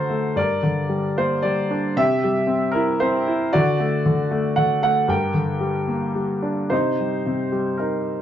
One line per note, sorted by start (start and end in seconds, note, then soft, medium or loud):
0.00 0.39 D3 soft
0.00 0.10 A3 soft
0.00 0.39 F#4 medium
0.00 0.39 A4 medium
0.00 0.39 A#4 medium
0.00 0.39 C5 medium
0.10 0.36 A3 soft
0.35 1.93 G2 soft
0.35 1.15 A#4 medium
0.35 1.14 D5 medium
0.63 1.68 D3 soft
0.89 1.43 G3 soft
1.17 1.95 A#3 soft
1.17 1.46 C5 medium
1.42 1.96 G3 soft
1.42 1.93 D5 medium
1.70 1.96 D4 soft
1.97 3.49 C3 soft
1.97 2.72 G4 medium
1.97 2.78 E5 medium
2.24 3.25 G3 soft
2.47 3.00 C4 soft
2.72 3.26 E4 medium
2.72 3.01 A#4 medium
3.00 3.52 C4 soft
3.00 3.49 C5 medium
3.27 3.53 E4 medium
3.53 4.04 D3 medium
3.53 4.53 F#4 medium
3.53 4.60 D5 medium
3.79 4.29 A3 medium
4.06 4.56 D3 medium
4.31 4.81 A3 medium
4.56 5.08 D3 soft
4.56 4.82 F#5 medium
4.83 5.08 A3 medium
4.83 5.10 F#5 medium
5.08 6.67 G2 medium
5.08 6.12 A#4 soft
5.08 6.13 G5 medium
5.34 6.40 D3 soft
5.60 6.14 G3 soft
5.87 6.68 A#3 soft
6.15 6.69 G3 soft
6.42 6.70 D4 soft
6.70 7.25 C3 soft
6.70 7.49 D#4 medium
6.70 7.48 C5 medium
7.00 7.51 G3 soft
7.26 8.22 C3 soft
7.52 8.22 G3 soft
7.77 8.22 D#4 soft
7.77 8.22 A#4 medium